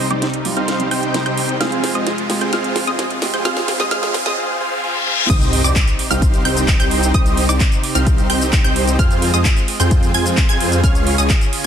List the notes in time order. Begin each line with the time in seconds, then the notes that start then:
Already playing: C2 C3 G3 D#4, riser
0.10 C3 G3 C4 D#4 G4 C5 D5 D6, closed hi-hat
0.22 snare, closed hi-hat
0.34 closed hi-hat
0.44 C3 G3 C4 D#4 F4, open hi-hat
0.57 C4 D#4 G4 C5 F5 F6, closed hi-hat
0.68 snare, closed hi-hat
0.79 C3 G3 C4 D#4 G4, closed hi-hat
0.91 C4 D#4 G4 C5 G5 G6, open hi-hat
1.03 closed hi-hat
1.14 C3 G3 C4 D#4 G4, snare, closed hi-hat
1.26 C4 D#4 G4 C5 G5 G6, closed hi-hat
1.37 open hi-hat
1.49 closed hi-hat
1.60 F2 G#3 C4 F4 G#4 C5 F5 F6, snare, closed hi-hat
1.72 closed hi-hat
1.84 snare, open hi-hat
1.94 G#3 C4 F4 G#4 C5 D#5 D#6, closed hi-hat
2.07 snare, closed hi-hat
2.18 closed hi-hat
2.29 G#3 C4 F4 G4, snare, open hi-hat
2.41 C4 F4 G#4 C5 G5 G6, closed hi-hat
2.52 G#3 C4 F4 G#4 C5 F5 F6, snare, closed hi-hat
2.64 closed hi-hat
2.76 snare, open hi-hat
2.87 G#3 C4 F4 G#4 C5 D#5 D#6, closed hi-hat
2.99 snare, closed hi-hat
3.10 closed hi-hat
3.21 G#3 C4 F4 G4, snare, open hi-hat
3.34 C4 F4 G#4 C5 G5 G6, closed hi-hat
3.44 C#2 C#3 G#3 C4 F4 G#4 C5 F5 F6, snare, closed hi-hat
3.57 snare, closed hi-hat
3.68 snare, open hi-hat
3.79 G#3 C4 F4 G#4 C5 D#5 D#6, snare, closed hi-hat
3.91 G#3 C4 F4 G#4 C5 F5 F6, snare, closed hi-hat
4.03 snare, closed hi-hat
4.14 snare, open hi-hat
4.25 G#3 C4 F4 G#4 C5 D#5 D#6, snare, closed hi-hat
4.37 C4 F4 G#4 C5 F5, reverse cymbal
4.60 C4 F4 G#4 C5 F5
4.84 C4 F4 G#4 C5 F5
5.07 C4 F4 G#4 C5 F5
5.30 C2 C3 C4 D#4 G4 C5 D#5 D#6, kick, closed hi-hat, crash, sub drop, cabasa
5.41 closed hi-hat, cabasa
5.53 open hi-hat
5.64 C2 C4 D#4 G4 C5 D5 D6, cabasa
5.76 kick, clap, closed hi-hat, cabasa
5.87 closed hi-hat, cabasa
5.99 open hi-hat
6.10 C2 C4 D#4 G4 C5 F5 F6, closed hi-hat, cabasa
6.22 kick, closed hi-hat, cabasa
6.34 closed hi-hat, cabasa
6.45 C2 C4 D#4 G4 C5 G5 G6, open hi-hat
6.57 closed hi-hat, cabasa
6.68 kick, clap, closed hi-hat, cabasa
6.80 C2 C4 D#4 G4 C5 G5 G6, closed hi-hat, cabasa
6.91 open hi-hat
7.03 closed hi-hat, cabasa
7.14 C2 C4 D#4 C5 D#5 D#6, kick, closed hi-hat, cabasa
7.26 closed hi-hat, cabasa
7.37 open hi-hat
7.49 C2 C4 D#4 G4 C5 D5 D6, closed hi-hat, cabasa
7.60 kick, clap, closed hi-hat, cabasa
7.72 closed hi-hat, cabasa
7.83 open hi-hat
7.95 C2 C4 D#4 G4 C5 F5 F6, closed hi-hat, cabasa
8.07 kick, closed hi-hat, cabasa
8.18 closed hi-hat, cabasa
8.30 C2 C4 D#4 G4 C5 G5 G6, open hi-hat
8.41 closed hi-hat, cabasa
8.53 kick, clap, closed hi-hat, cabasa
8.64 C2 C4 D#4 G4 C5 G5 G6, closed hi-hat, cabasa
8.76 open hi-hat
8.88 closed hi-hat, cabasa
8.99 G#3 C4 F4 C5 F5 F6, kick, closed hi-hat, cabasa
9.11 closed hi-hat, cabasa
9.22 open hi-hat
9.34 F2 C4 F4 G#4 C5 D#5 D#6, cabasa
9.45 kick, clap, closed hi-hat, cabasa
9.57 closed hi-hat, cabasa
9.68 open hi-hat
9.80 F2 C4 F4 G#4 C5 G5 G6, closed hi-hat, cabasa
9.91 kick, closed hi-hat, cabasa
10.03 closed hi-hat, cabasa
10.14 F2 C4 F4 G#4 C5 G#5 G#6, open hi-hat
10.26 closed hi-hat, cabasa
10.37 kick, clap, closed hi-hat, cabasa
10.49 F2 C4 F4 G#4 C5 G#5 G#6, closed hi-hat, cabasa
10.60 open hi-hat
10.72 closed hi-hat, cabasa
10.84 C#2 C#3 C#4 G#4 C#5 F6, kick, closed hi-hat, cabasa
10.95 closed hi-hat, cabasa
11.07 open hi-hat
11.18 C#2 C#4 F4 G#4 C#5 D#5 D#6, closed hi-hat, cabasa
11.30 kick, clap, closed hi-hat, cabasa
11.41 closed hi-hat, cabasa
11.53 open hi-hat